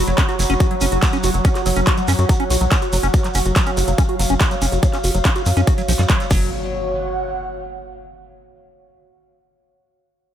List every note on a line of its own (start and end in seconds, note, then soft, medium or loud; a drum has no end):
0.00 6.31 F#3 medium
0.00 6.30 F#4 medium
0.00 6.31 C#5 medium
0.00 0.12 B5 medium
0.07 0.14 F#1 medium
0.07 0.12 F#3 medium
0.07 3.50 F#5 medium
0.07 closed hi-hat soft
0.07 shekere soft
0.18 0.22 C#4 loud
0.18 kick loud
0.18 clap loud
0.18 closed hi-hat medium
0.18 shekere soft
0.29 0.35 F#4 medium
0.29 closed hi-hat soft
0.29 shekere soft
0.39 0.46 F#1 medium
0.39 0.44 F#3 medium
0.39 open hi-hat medium
0.39 shekere loud
0.50 0.56 F#1 medium
0.50 0.54 C#4 loud
0.50 closed hi-hat soft
0.50 shekere soft
0.60 0.67 F#4 medium
0.60 kick loud
0.60 closed hi-hat medium
0.60 shekere medium
0.71 0.75 F#3 medium
0.71 closed hi-hat soft
0.81 0.88 F#1 medium
0.81 0.86 C#4 loud
0.81 open hi-hat loud
0.81 shekere medium
0.92 0.99 F#1 medium
0.92 0.99 F#4 medium
0.92 closed hi-hat soft
0.92 shekere soft
1.02 1.07 F#3 medium
1.02 kick loud
1.02 clap loud
1.02 closed hi-hat medium
1.02 shekere medium
1.13 1.18 C#4 loud
1.13 closed hi-hat soft
1.13 shekere soft
1.23 1.30 F#1 medium
1.23 1.30 F#4 medium
1.23 open hi-hat loud
1.23 shekere medium
1.34 1.41 F#1 medium
1.34 1.39 F#3 medium
1.34 closed hi-hat soft
1.34 shekere soft
1.45 1.49 C#4 loud
1.45 kick loud
1.45 closed hi-hat medium
1.45 shekere medium
1.55 1.62 F#4 medium
1.55 clap soft
1.55 closed hi-hat soft
1.55 shekere soft
1.66 1.73 F#1 medium
1.66 1.70 F#3 medium
1.66 open hi-hat loud
1.66 shekere medium
1.76 1.83 F#1 medium
1.76 1.81 C#4 loud
1.76 closed hi-hat medium
1.76 shekere soft
1.87 1.94 F#4 medium
1.87 kick loud
1.87 clap loud
1.87 closed hi-hat medium
1.87 shekere soft
1.97 2.02 F#3 medium
1.97 closed hi-hat soft
1.97 shekere soft
2.08 2.15 F#2 loud
2.08 2.13 C#4 loud
2.08 open hi-hat medium
2.08 shekere medium
2.18 2.25 F#2 medium
2.18 2.25 F#4 medium
2.18 closed hi-hat medium
2.18 shekere soft
2.29 2.34 F#3 medium
2.29 kick loud
2.29 closed hi-hat medium
2.29 shekere medium
2.40 2.44 C#4 loud
2.40 closed hi-hat soft
2.50 2.57 B1 loud
2.50 2.57 F#4 medium
2.50 open hi-hat loud
2.50 shekere medium
2.60 2.68 B1 medium
2.60 2.65 F#3 medium
2.60 closed hi-hat medium
2.60 shekere soft
2.72 2.76 C#4 loud
2.72 kick loud
2.72 clap loud
2.72 closed hi-hat medium
2.72 shekere soft
2.82 2.89 F#4 medium
2.82 closed hi-hat soft
2.82 shekere soft
2.93 2.99 F#1 medium
2.93 2.97 F#3 medium
2.93 open hi-hat loud
2.93 shekere medium
3.03 3.10 F#1 medium
3.03 3.08 C#4 loud
3.03 closed hi-hat medium
3.03 shekere soft
3.14 3.20 F#4 medium
3.14 kick loud
3.14 closed hi-hat medium
3.14 shekere soft
3.24 3.29 F#3 medium
3.24 clap soft
3.24 closed hi-hat soft
3.24 shekere soft
3.35 3.42 F#1 medium
3.35 3.39 C#4 loud
3.35 open hi-hat loud
3.35 shekere medium
3.45 3.52 F#1 medium
3.45 3.52 F#4 medium
3.45 6.31 F5 medium
3.45 closed hi-hat medium
3.45 shekere soft
3.56 3.60 F#3 medium
3.56 kick loud
3.56 clap loud
3.56 closed hi-hat medium
3.56 shekere medium
3.66 3.71 C#4 loud
3.66 closed hi-hat soft
3.66 shekere soft
3.77 3.84 F#1 loud
3.77 3.84 F#4 medium
3.77 open hi-hat medium
3.77 shekere medium
3.88 3.94 F#1 medium
3.88 3.92 F#3 medium
3.88 closed hi-hat soft
3.88 shekere soft
3.98 4.03 C#4 loud
3.98 kick loud
3.98 closed hi-hat medium
3.98 shekere medium
4.09 4.15 F#4 medium
4.09 closed hi-hat soft
4.19 4.26 F#1 loud
4.19 4.24 F#3 medium
4.19 open hi-hat loud
4.19 shekere medium
4.29 4.37 F#1 medium
4.29 4.34 C#4 loud
4.29 closed hi-hat medium
4.29 shekere soft
4.40 4.47 F#4 medium
4.40 kick loud
4.40 clap loud
4.40 closed hi-hat medium
4.40 shekere soft
4.51 4.56 F#3 medium
4.51 closed hi-hat soft
4.51 shekere soft
4.62 4.68 F#1 medium
4.62 4.66 C#4 loud
4.62 open hi-hat medium
4.62 shekere medium
4.72 4.79 F#1 medium
4.72 4.79 F#4 medium
4.72 closed hi-hat medium
4.72 shekere soft
4.83 4.87 F#3 medium
4.83 kick loud
4.83 closed hi-hat medium
4.83 shekere medium
4.93 4.98 C#4 loud
4.93 clap soft
4.93 closed hi-hat soft
4.93 shekere soft
5.04 5.11 F#1 medium
5.04 5.11 F#4 medium
5.04 open hi-hat loud
5.04 shekere medium
5.15 5.21 F#1 medium
5.15 5.19 F#3 medium
5.15 closed hi-hat medium
5.15 shekere soft
5.25 5.29 C#4 loud
5.25 kick loud
5.25 clap loud
5.25 closed hi-hat medium
5.25 shekere soft
5.36 5.42 F#4 medium
5.36 closed hi-hat soft
5.36 shekere soft
5.46 5.53 F#2 loud
5.46 5.51 F#3 medium
5.46 open hi-hat medium
5.46 shekere medium
5.57 5.63 F#2 medium
5.57 5.61 C#4 loud
5.57 closed hi-hat medium
5.57 shekere soft
5.67 5.74 F#4 medium
5.67 kick loud
5.67 closed hi-hat medium
5.67 shekere soft
5.78 5.82 F#3 medium
5.78 closed hi-hat soft
5.78 shekere soft
5.88 5.95 B1 loud
5.88 5.93 F3 medium
5.88 open hi-hat loud
5.88 shekere medium
5.99 6.06 F#2 medium
5.99 6.02 G3 medium
5.99 clap soft
5.99 closed hi-hat medium
5.99 shekere soft
6.10 6.22 F#3 medium
6.10 kick loud
6.10 clap loud
6.10 closed hi-hat medium
6.10 shekere soft
6.20 6.27 G3 medium
6.20 closed hi-hat soft
6.20 shekere soft
6.31 6.50 F#1 medium
6.31 6.50 F#3 medium
6.31 7.96 F#4 medium
6.31 kick loud
6.31 crash medium
6.31 impact medium
6.31 shekere loud
6.37 7.96 C#5 medium
6.41 shekere soft
6.64 8.17 F#5 medium